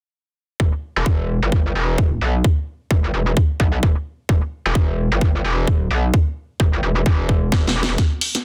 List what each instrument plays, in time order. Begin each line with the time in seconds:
0.60 wobble bass E1, kick
0.96 wobble bass E1
1.06 kick
1.42 wobble bass G1
1.52 kick
1.75 wobble bass E1
1.98 kick
2.21 wobble bass B1
2.44 kick
2.91 wobble bass E1, kick
3.04 wobble bass G1
3.14 wobble bass E1
3.37 kick
3.60 wobble bass B1, kick
3.83 wobble bass E1, kick
4.29 wobble bass E1, kick
4.66 wobble bass E1
4.75 kick
5.12 wobble bass G1
5.21 kick
5.44 wobble bass E1
5.67 kick
5.91 wobble bass B1
6.14 kick
6.60 wobble bass E1, kick
6.73 wobble bass G1
6.83 wobble bass E1
7.06 wobble bass E1, kick
7.29 kick
7.52 wobble bass E1, kick, snare
7.67 snare
7.83 snare
7.89 wobble bass E1
7.98 kick, snare, closed hi-hat
8.21 open hi-hat
8.35 snare, closed hi-hat